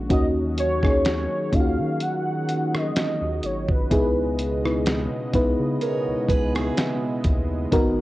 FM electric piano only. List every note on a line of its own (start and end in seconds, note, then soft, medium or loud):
0.09 0.55 A#3 medium
0.09 0.55 C#4 medium
0.09 0.55 D#4 medium
0.09 0.56 F#4 loud
0.82 1.28 A#3 medium
0.82 1.28 C#4 medium
0.82 1.28 D#4 medium
0.82 1.29 G#4 medium
1.52 2.74 A#3 medium
1.52 2.75 C#4 medium
1.52 2.75 D#4 medium
1.52 1.60 F4 medium
1.60 2.79 F#4 medium
3.91 4.36 B3 medium
3.91 4.36 D#4 medium
3.91 4.37 E4 medium
3.91 4.37 G#4 loud
4.64 5.09 B3 medium
4.64 5.09 D#4 medium
4.64 5.09 E4 medium
4.64 5.10 B4 medium
5.34 6.56 B3 medium
5.34 6.56 D#4 medium
5.34 6.56 E4 medium
5.34 6.56 B4 loud
7.72 8.01 B3 loud
7.72 8.01 D#4 loud
7.72 8.01 F#4 loud
7.72 8.01 A#4 loud